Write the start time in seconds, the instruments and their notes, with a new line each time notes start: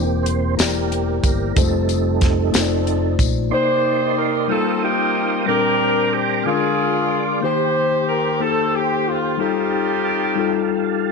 Already playing: fingered electric bass E1, tine electric piano E3 A#3 E4 G4 C5, tonewheel organ A#3 C4 G4
0.23 tonewheel organ C5, closed hi-hat
0.57 fingered electric bass E1, tine electric piano A#3 E4 G4 D5, tonewheel organ G4 A#4, snare, closed hi-hat, tambourine
0.92 closed hi-hat
1.24 fingered electric bass G1, kick, closed hi-hat, tambourine
1.54 fingered electric bass F1, tonewheel organ G3 A3 C4 D#4 A4, tine electric piano G#3 D#4 F4 C5, kick, closed hi-hat, tambourine
1.61 tine electric piano A3
1.89 closed hi-hat, tambourine
2.21 kick, snare, closed hi-hat
2.51 fingered electric bass F1, tine electric piano A3 D#4 F4, snare, closed hi-hat, tambourine
2.56 tine electric piano C5
2.62 tine electric piano D5
2.87 closed hi-hat
3.19 fingered electric bass A#1, kick, closed hi-hat, tambourine
3.50 tine electric piano C3 A#3 D#4 C5 D5, tonewheel organ A#3 D#4 D5 C6, saxophone section D#4 G4 C5
4.18 saxophone section A#4
4.48 tine electric piano G3 A#3 D#4 F4, saxophone section C4 D#4 A4, tonewheel organ F5 G5 D#6
4.83 saxophone section A#3 D#4 G4
5.46 tine electric piano A#2 G3 C4 D4 A4, saxophone section D4 G4 A#4, tonewheel organ C5 A#5 D6
5.56 tine electric piano A#4
6.13 saxophone section G4
6.43 tine electric piano D3 G#3 C#4 F4, tonewheel organ D4 G#4 F5, saxophone section F4 G#4
6.47 tine electric piano A#4
6.52 tine electric piano D4
7.41 tine electric piano D#3 A#3 D#4 G4 C5, tonewheel organ G4 C5, saxophone section G4 C5
8.08 saxophone section A#4
8.40 tine electric piano A#3 D#4 G4 A4, saxophone section A4
8.75 saxophone section G4
9.08 saxophone section F4
9.38 tine electric piano G3 D#4 F4 A4, saxophone section C4 D#4 G4, tonewheel organ F5 A5
10.36 tine electric piano G3 D#4 F4 A4